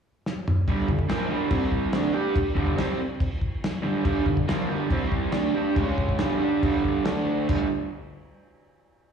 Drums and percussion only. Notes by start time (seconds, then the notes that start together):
0.26 snare
0.48 mid tom
0.68 kick, crash
0.89 kick
0.99 kick
1.09 snare, crash
1.51 kick, crash
1.72 kick
1.93 snare, crash
2.36 kick, crash
2.57 kick
2.67 kick
2.78 snare, crash
3.20 kick, crash
3.41 kick
3.64 snare, crash
4.05 kick, crash
4.26 kick
4.37 kick
4.49 snare, crash
4.91 kick, crash
5.12 kick
5.32 snare, crash
5.76 kick, crash
5.98 kick
6.09 kick
6.19 snare, crash
6.63 kick, crash
6.84 kick
7.05 snare, crash
7.49 kick, crash